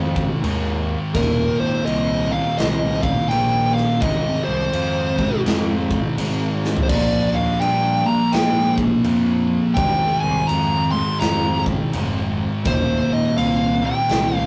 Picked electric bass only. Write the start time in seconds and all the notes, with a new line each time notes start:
Already playing: F2
0.42 D#2
1.15 D#1
1.59 G#1
1.87 C2
2.59 C2
3.31 A#1
4.02 G#1
4.47 C2
4.73 F2
5.45 F2
6.17 G#1
6.89 A#1
7.33 D#2
7.60 G2
8.33 G#2
9.05 F2
9.77 G#1
10.23 C2
10.50 F2
11.21 F2
11.94 F1
12.66 D#1
13.10 G#1
13.38 C2
14.10 C2